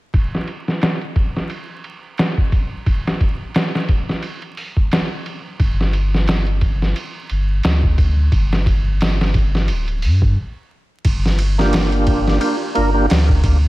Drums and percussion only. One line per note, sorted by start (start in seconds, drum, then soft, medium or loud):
0.14 kick medium
0.14 ride medium
0.35 snare soft
0.48 ride medium
0.68 snare soft
0.82 snare loud
0.82 ride medium
1.01 ride soft
1.16 kick medium
1.16 ride medium
1.36 snare soft
1.50 ride medium
1.84 ride medium
2.18 snare medium
2.18 ride medium
2.38 kick medium
2.52 kick medium
2.52 ride medium
2.86 kick medium
2.86 ride medium
3.07 snare soft
3.21 kick medium
3.21 ride medium
3.54 snare loud
3.54 ride medium
3.75 snare medium
3.89 kick medium
3.89 ride medium
4.09 snare soft
4.22 ride medium
4.42 ride soft
4.57 open hi-hat medium
4.77 kick medium
4.92 snare loud
4.92 ride medium
5.26 ride medium
5.60 kick medium
5.60 ride medium
5.81 snare soft
5.93 ride medium
6.14 snare soft
6.27 snare loud
6.27 ride medium
6.47 ride soft
6.61 kick medium
6.61 ride medium
6.82 snare soft
6.96 ride medium
7.29 ride medium
7.63 snare loud
7.63 ride medium
7.83 kick medium
7.98 kick medium
7.98 ride medium
8.32 kick medium
8.32 ride medium
8.53 snare soft
8.66 kick medium
8.66 ride medium
9.01 snare loud
9.01 ride medium
9.21 snare medium
9.34 kick medium
9.34 ride medium
9.55 snare soft
9.68 ride medium
9.88 ride soft
10.02 open hi-hat medium
10.22 kick medium
11.05 kick medium
11.05 ride medium
11.26 snare soft
11.39 ride medium
11.59 snare soft
11.73 snare loud
11.73 ride medium
11.92 ride soft
12.07 kick medium
12.07 ride medium
12.28 snare soft
12.41 ride medium
12.75 ride medium
13.10 snare loud
13.10 ride medium
13.29 kick medium
13.44 kick medium
13.44 ride medium